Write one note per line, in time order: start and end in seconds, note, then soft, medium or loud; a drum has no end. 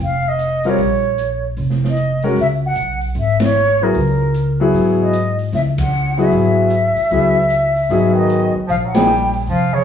0.00 0.74 F1 medium
0.00 0.30 F5 medium
0.29 0.71 D#5 medium
0.39 closed hi-hat medium
0.64 0.77 G3 medium
0.64 0.77 C4 medium
0.64 0.78 F4 medium
0.64 0.78 A#4 medium
0.64 open hi-hat soft
0.69 1.46 C#5 medium
0.78 1.54 A#1 medium
0.78 open hi-hat soft
1.18 closed hi-hat medium
1.57 2.33 F1 medium
1.57 open hi-hat soft
1.70 snare soft
1.84 snare soft
1.90 2.23 D#5 medium
1.97 closed hi-hat medium
2.23 2.36 G#3 medium
2.23 2.36 C#4 medium
2.23 2.36 F#4 medium
2.23 2.36 A#4 medium
2.23 open hi-hat soft
2.36 2.73 C#2 medium
2.36 open hi-hat soft
2.41 2.47 E5 loud
2.66 3.01 F#5 medium
2.76 3.13 B1 medium
2.76 closed hi-hat medium
3.01 open hi-hat soft
3.15 3.91 G#1 medium
3.15 open hi-hat soft
3.19 3.41 E5 medium
3.40 3.85 C#5 medium
3.40 snare medium
3.40 ride medium
3.81 3.94 F#3 medium
3.81 3.94 B3 medium
3.81 3.94 E4 medium
3.81 3.94 G#4 medium
3.81 4.61 A#4 medium
3.94 4.70 C#2 medium
3.94 open hi-hat soft
4.34 closed hi-hat medium
4.60 5.11 F#3 medium
4.60 5.11 B3 medium
4.60 5.11 E4 medium
4.60 5.11 G#4 medium
4.74 5.49 G#2 medium
4.74 open hi-hat soft
5.02 5.37 D#5 medium
5.13 closed hi-hat medium
5.39 open hi-hat soft
5.52 6.28 C#2 medium
5.52 5.61 E5 medium
5.52 snare soft
5.52 open hi-hat soft
5.78 6.16 F#5 medium
5.78 kick medium
5.78 ride medium
6.17 6.69 F#3 medium
6.17 6.69 B3 medium
6.17 6.69 E4 medium
6.17 6.69 G#4 medium
6.17 8.13 E5 loud
6.17 open hi-hat soft
6.31 6.93 G#1 medium
6.31 open hi-hat soft
6.70 closed hi-hat medium
6.96 muted upright bass stroke soft
6.96 open hi-hat soft
7.11 7.86 C#2 medium
7.11 7.34 F#3 medium
7.11 7.34 B3 medium
7.11 7.34 E4 medium
7.11 7.35 G#4 medium
7.11 open hi-hat soft
7.50 closed hi-hat medium
7.76 open hi-hat soft
7.89 8.51 G#1 medium
7.89 8.50 F#3 medium
7.89 8.51 B3 medium
7.89 8.51 D#4 medium
7.89 8.51 G#4 medium
7.89 open hi-hat soft
8.13 8.51 D#3 medium
8.17 8.53 D#5 medium
8.30 closed hi-hat medium
8.55 muted upright bass stroke soft
8.67 9.44 A#1 medium
8.67 8.75 F3 medium
8.67 8.76 F5 loud
8.67 open hi-hat soft
8.85 8.95 F#3 medium
8.85 8.97 F#5 medium
8.94 9.08 F3 medium
8.94 9.34 G3 medium
8.94 9.08 A#3 medium
8.94 9.08 D#4 medium
8.94 9.08 G#4 medium
8.94 9.35 G5 medium
8.94 snare medium
8.94 ride medium
9.33 open hi-hat soft
9.47 9.84 F1 medium
9.47 9.75 F3 medium
9.47 9.75 F5 medium
9.47 open hi-hat soft
9.74 9.84 C#3 medium
9.74 9.84 C#5 medium